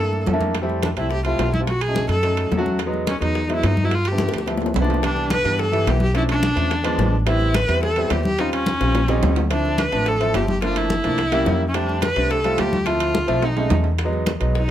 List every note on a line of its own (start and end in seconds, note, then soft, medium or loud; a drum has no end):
0.00 0.24 G2 medium
0.00 0.23 A3 medium
0.00 0.23 A#3 medium
0.00 0.23 D4 medium
0.00 0.24 E4 medium
0.00 0.25 A4 medium
0.13 high bongo soft
0.13 high conga soft
0.26 0.92 F2 medium
0.26 high bongo soft
0.26 low bongo medium
0.26 high conga medium
0.26 low timbale medium
0.33 0.53 A3 medium
0.33 0.53 A#3 medium
0.33 0.53 D4 medium
0.33 0.53 E4 medium
0.41 high conga medium
0.41 low timbale medium
0.55 high bongo medium
0.55 high conga soft
0.55 high timbale medium
0.62 0.86 G3 medium
0.62 0.87 A3 medium
0.62 0.87 C4 medium
0.62 0.87 E4 medium
0.69 high bongo soft
0.69 high conga soft
0.83 0.90 D4 medium
0.83 high bongo medium
0.83 high conga medium
0.83 high timbale medium
0.83 low timbale medium
0.97 1.36 C2 medium
0.97 1.17 G3 medium
0.97 1.17 A3 medium
0.97 1.17 C4 medium
0.97 1.17 E4 medium
0.97 1.11 E4 medium
0.97 high bongo soft
0.97 high conga soft
0.97 high timbale medium
1.11 1.25 G4 medium
1.11 high bongo medium
1.11 high conga soft
1.25 1.50 G3 medium
1.25 1.50 A3 medium
1.25 1.50 C4 medium
1.25 1.50 E4 medium
1.25 1.52 F4 medium
1.25 high bongo soft
1.25 high conga soft
1.25 high timbale medium
1.39 2.04 B1 medium
1.39 high bongo soft
1.39 low bongo medium
1.39 high conga soft
1.39 high timbale medium
1.39 low timbale medium
1.54 1.60 E4 medium
1.54 high conga medium
1.60 1.67 G3 medium
1.60 1.67 A3 medium
1.60 1.68 C4 medium
1.60 1.68 F4 medium
1.67 1.83 F#4 medium
1.67 high bongo medium
1.67 high conga soft
1.67 high timbale medium
1.81 2.09 G#4 medium
1.81 high bongo soft
1.81 high conga soft
1.81 high timbale medium
1.88 2.13 F#3 medium
1.88 2.13 A3 medium
1.88 2.13 C#4 medium
1.88 2.13 D#4 medium
1.95 high bongo medium
1.95 high conga medium
1.95 low timbale medium
2.09 2.48 F#2 medium
2.09 2.49 A4 medium
2.09 high bongo soft
2.09 high conga soft
2.09 high timbale medium
2.23 2.48 F#3 medium
2.23 2.48 A3 medium
2.23 2.48 C#4 medium
2.23 2.48 D#4 medium
2.23 high bongo medium
2.23 high conga soft
2.23 high timbale medium
2.37 high bongo soft
2.37 high conga soft
2.37 high timbale medium
2.51 3.16 E2 medium
2.51 high bongo soft
2.51 low bongo medium
2.51 high conga medium
2.51 low timbale medium
2.57 2.78 F#3 medium
2.57 2.78 A3 medium
2.57 2.78 C#4 medium
2.57 2.78 F#4 loud
2.66 high conga medium
2.79 high bongo medium
2.79 high conga soft
2.79 high timbale medium
2.86 3.11 F#3 medium
2.86 3.11 G#3 medium
2.86 3.11 B3 medium
2.86 3.11 D#4 medium
2.93 high bongo soft
2.93 high conga soft
3.07 3.21 C#4 medium
3.07 high bongo soft
3.07 high conga medium
3.07 high timbale medium
3.07 low timbale medium
3.20 3.60 E2 medium
3.20 3.41 F#3 medium
3.20 3.41 G#3 medium
3.20 3.41 B3 medium
3.20 3.41 D#4 medium
3.20 3.48 D#4 medium
3.20 high bongo soft
3.20 high conga soft
3.20 high timbale medium
3.35 high bongo medium
3.35 high conga soft
3.49 3.73 F#3 medium
3.49 3.74 G#3 medium
3.49 3.74 B3 medium
3.49 3.74 E4 medium
3.49 high bongo soft
3.49 high conga soft
3.49 high timbale medium
3.56 3.68 E4 medium
3.63 4.28 G2 medium
3.63 3.86 D#4 medium
3.63 high bongo soft
3.63 low bongo medium
3.63 high conga soft
3.63 high timbale medium
3.63 low timbale medium
3.77 high conga medium
3.84 3.91 F#3 medium
3.84 3.91 G#3 medium
3.84 3.91 B3 medium
3.84 3.97 E4 medium
3.84 3.91 F#4 medium
3.91 4.09 F4 medium
3.91 high bongo medium
3.91 high conga soft
3.91 high timbale medium
4.05 4.48 G4 medium
4.05 high bongo soft
4.05 high conga soft
4.05 high timbale medium
4.12 4.36 F3 medium
4.12 4.37 A3 medium
4.12 4.37 B3 medium
4.12 4.37 D4 medium
4.18 high bongo medium
4.18 high conga medium
4.18 low timbale medium
4.29 high bongo medium
4.29 high conga soft
4.34 4.72 D2 medium
4.34 high timbale medium
4.38 high bongo medium
4.46 4.71 F3 medium
4.46 4.71 A3 medium
4.46 4.72 B3 medium
4.46 4.72 E4 medium
4.46 high bongo medium
4.46 high conga soft
4.46 high timbale medium
4.57 low bongo medium
4.57 high conga soft
4.62 high timbale medium
4.66 low bongo medium
4.74 5.40 C2 medium
4.74 high conga medium
4.74 high timbale loud
4.81 5.01 F3 medium
4.81 5.01 A3 medium
4.81 5.01 B3 medium
4.81 5.02 D4 loud
4.81 low bongo medium
4.90 low timbale medium
4.94 low bongo medium
5.02 5.32 E3 medium
5.02 5.32 G3 medium
5.02 5.32 B3 medium
5.02 5.33 D4 medium
5.02 5.30 D4 medium
5.02 high bongo medium
5.02 high conga soft
5.02 high timbale medium
5.16 high bongo soft
5.16 high conga soft
5.30 5.58 B4 loud
5.30 high bongo medium
5.30 high conga loud
5.30 high timbale medium
5.30 low timbale medium
5.44 5.84 G2 medium
5.44 5.64 E3 medium
5.44 5.64 G3 medium
5.44 5.64 B3 medium
5.44 5.65 D4 medium
5.44 high bongo soft
5.44 high conga soft
5.44 high timbale medium
5.59 5.91 A4 medium
5.59 high bongo medium
5.59 high conga soft
5.72 6.02 E3 medium
5.72 6.02 G3 medium
5.72 6.02 B3 medium
5.72 6.02 E4 medium
5.72 high bongo soft
5.72 high conga soft
5.72 high timbale medium
5.87 6.51 B1 medium
5.87 6.02 G4 medium
5.87 high bongo soft
5.87 low bongo medium
5.87 high conga soft
5.87 high timbale medium
5.87 low timbale medium
6.00 6.15 G4 medium
6.00 high conga medium
6.14 6.44 F3 medium
6.14 6.44 A3 medium
6.14 6.44 C#4 medium
6.14 6.44 D4 medium
6.14 6.23 E4 medium
6.14 high bongo medium
6.14 high conga soft
6.14 high timbale medium
6.29 7.10 D4 loud
6.29 high bongo soft
6.29 high conga soft
6.29 high timbale medium
6.43 high bongo medium
6.43 high conga medium
6.43 low timbale medium
6.56 6.96 E2 medium
6.56 6.70 F3 medium
6.56 6.71 A3 medium
6.56 6.71 C#4 medium
6.56 6.71 D4 medium
6.56 high bongo soft
6.56 high conga soft
6.56 high timbale medium
6.71 high bongo medium
6.71 high conga soft
6.71 high timbale medium
6.84 7.14 F3 medium
6.84 7.14 G#3 medium
6.84 7.14 B3 medium
6.84 7.14 D4 loud
6.84 high bongo soft
6.84 high conga soft
6.84 high timbale medium
6.98 7.63 A1 medium
6.98 high bongo soft
6.98 low bongo medium
6.98 high conga medium
6.98 low timbale medium
7.26 7.56 G3 medium
7.26 7.56 B3 medium
7.26 7.56 C4 medium
7.26 7.56 E4 medium
7.26 7.57 E4 medium
7.26 high bongo medium
7.26 high conga soft
7.26 high timbale medium
7.40 high bongo soft
7.40 high conga soft
7.54 7.83 B4 loud
7.54 high bongo medium
7.54 high conga medium
7.54 high timbale medium
7.54 low timbale medium
7.68 8.08 E2 medium
7.68 7.88 G3 medium
7.68 7.88 B3 medium
7.68 7.88 C4 medium
7.68 7.88 E4 medium
7.68 high bongo soft
7.68 high conga soft
7.68 high timbale medium
7.83 8.13 A4 loud
7.83 high bongo medium
7.83 high conga soft
7.96 8.26 G3 medium
7.96 8.26 B3 medium
7.96 8.27 C4 medium
7.96 8.27 E4 medium
7.96 high bongo soft
7.96 high conga soft
7.96 high timbale medium
8.10 8.75 D#2 medium
8.10 8.25 G4 medium
8.10 high bongo soft
8.10 low bongo medium
8.10 high conga soft
8.10 high timbale medium
8.10 low timbale medium
8.25 8.42 G4 medium
8.25 high conga medium
8.39 8.68 G3 medium
8.39 8.68 C4 medium
8.39 8.68 C#4 medium
8.39 8.53 D#4 medium
8.39 8.69 F4 medium
8.39 high bongo medium
8.39 high conga soft
8.39 high timbale medium
8.52 9.34 C#4 medium
8.52 high bongo soft
8.52 high conga soft
8.52 high timbale medium
8.66 high bongo medium
8.66 high conga medium
8.66 low timbale medium
8.80 9.20 A#1 loud
8.80 9.00 G3 medium
8.80 9.00 C4 medium
8.80 9.00 C#4 medium
8.80 9.00 F4 medium
8.80 high bongo medium
8.80 high conga soft
8.80 high timbale medium
8.95 low bongo medium
8.95 high conga soft
8.95 high timbale medium
9.08 9.38 G3 medium
9.08 9.38 C4 medium
9.08 9.38 C#4 medium
9.08 9.39 D#4 loud
9.08 low bongo medium
9.08 high conga soft
9.08 high timbale medium
9.23 9.87 D2 medium
9.23 low bongo medium
9.23 high conga medium
9.23 high timbale medium
9.36 low bongo medium
9.36 low timbale medium
9.50 9.80 F3 medium
9.50 9.80 A3 medium
9.50 9.80 C4 medium
9.50 9.81 D4 medium
9.50 9.80 E4 medium
9.50 high bongo medium
9.50 high conga soft
9.50 high timbale medium
9.65 high bongo soft
9.65 high conga soft
9.78 10.10 B4 medium
9.78 high bongo medium
9.78 high conga medium
9.78 high timbale medium
9.78 low timbale medium
9.92 10.32 A1 medium
9.92 10.12 F3 medium
9.92 10.12 A3 medium
9.92 10.12 C4 medium
9.92 10.12 D4 medium
9.92 high bongo soft
9.92 high conga soft
9.92 high timbale medium
10.06 10.37 A4 loud
10.06 high bongo medium
10.06 high conga soft
10.20 10.50 F3 medium
10.20 10.50 A3 medium
10.20 10.50 C4 medium
10.20 10.50 E4 medium
10.20 high bongo soft
10.20 high conga soft
10.20 high timbale medium
10.34 10.99 G1 medium
10.34 10.49 G4 medium
10.34 high bongo soft
10.34 low bongo medium
10.34 high conga soft
10.34 high timbale medium
10.34 low timbale medium
10.48 10.62 G4 medium
10.48 high conga medium
10.62 10.92 F3 medium
10.62 10.92 A3 medium
10.62 10.92 A#3 medium
10.62 10.92 D4 medium
10.62 10.79 F4 medium
10.62 high bongo medium
10.62 high conga soft
10.62 high timbale medium
10.76 11.61 E4 medium
10.76 high bongo soft
10.76 high conga soft
10.76 high timbale medium
10.90 high bongo medium
10.90 high conga medium
10.90 low timbale medium
11.04 11.44 C2 medium
11.04 11.18 F3 medium
11.04 11.18 A3 medium
11.04 11.19 A#3 medium
11.04 11.19 D4 medium
11.04 high bongo soft
11.04 high conga soft
11.04 high timbale medium
11.18 high bongo medium
11.18 high conga soft
11.18 high timbale medium
11.32 11.62 G3 medium
11.32 11.62 A#3 medium
11.32 11.62 C#4 medium
11.32 11.62 E4 loud
11.32 high bongo soft
11.32 high conga soft
11.32 high timbale medium
11.46 12.11 F2 medium
11.46 high bongo soft
11.46 low bongo medium
11.46 high conga medium
11.46 low timbale medium
11.69 11.76 C#4 medium
11.74 12.04 G3 medium
11.74 12.04 A3 medium
11.74 12.04 C4 medium
11.74 12.03 D4 medium
11.74 12.04 D4 medium
11.74 high bongo medium
11.74 high conga soft
11.74 high timbale medium
11.89 high bongo soft
11.89 high conga soft
12.02 12.32 B4 loud
12.02 high bongo medium
12.02 high conga medium
12.02 high timbale loud
12.02 low timbale medium
12.16 12.56 C2 medium
12.16 12.36 G3 medium
12.16 12.36 A3 medium
12.16 12.36 C4 medium
12.16 12.37 D4 medium
12.16 high bongo soft
12.16 high conga soft
12.16 high timbale medium
12.31 12.61 A4 medium
12.31 high bongo medium
12.31 high conga soft
12.44 12.74 G3 medium
12.44 12.74 A3 medium
12.44 12.74 C4 medium
12.44 12.75 F4 medium
12.44 high bongo soft
12.44 high conga soft
12.44 high timbale medium
12.58 13.23 D2 medium
12.58 12.88 G4 medium
12.58 high bongo soft
12.58 low bongo medium
12.58 high conga soft
12.58 high timbale medium
12.58 low timbale medium
12.73 high conga medium
12.86 13.16 F3 medium
12.86 13.16 A3 medium
12.86 13.16 C4 medium
12.86 13.16 E4 medium
12.86 13.45 F4 medium
12.86 high bongo medium
12.86 high conga soft
12.86 high timbale medium
13.00 high bongo soft
13.00 high conga soft
13.00 high timbale medium
13.14 high bongo medium
13.14 high conga medium
13.14 low timbale medium
13.28 13.68 B1 loud
13.28 13.42 F3 medium
13.28 13.42 A3 medium
13.28 13.43 C4 medium
13.28 13.43 E4 medium
13.28 high bongo soft
13.28 high conga soft
13.28 high timbale medium
13.42 13.71 D#4 medium
13.42 high bongo medium
13.42 high conga soft
13.42 high timbale medium
13.57 13.86 G#3 medium
13.57 13.86 A3 medium
13.57 13.86 C#4 medium
13.57 13.87 D#4 medium
13.57 high bongo soft
13.57 high conga soft
13.57 high timbale medium
13.70 14.36 E2 medium
13.70 high bongo soft
13.70 low bongo medium
13.70 high conga medium
13.70 low timbale medium
13.84 low timbale medium
13.99 high bongo medium
13.99 high conga soft
13.99 high timbale medium
14.04 14.30 F#3 medium
14.04 14.30 G#3 medium
14.04 14.30 B3 medium
14.04 14.30 D#4 medium
14.13 high bongo soft
14.13 high conga soft
14.26 high bongo medium
14.26 high conga medium
14.26 high timbale medium
14.26 low timbale medium
14.40 14.71 B1 medium
14.40 14.60 F#3 medium
14.40 14.60 G#3 medium
14.40 14.61 B3 medium
14.40 14.61 D#4 medium
14.40 high bongo soft
14.40 high conga soft
14.40 high timbale medium
14.55 14.71 D#4 medium
14.55 high bongo medium
14.55 high conga soft